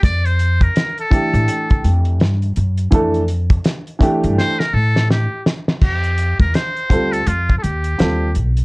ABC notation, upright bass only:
X:1
M:4/4
L:1/16
Q:"Swing 16ths" 1/4=83
K:F
V:1 name="Upright bass" clef=bass
F,,4 z3 A,, z2 F,,2 G,,2 _G,,2 | F,,4 z3 G,, z2 A,,3 z3 | F,,3 E,, z2 D,,2 F,,2 _E,,2 E,,2 =B,,,2 |]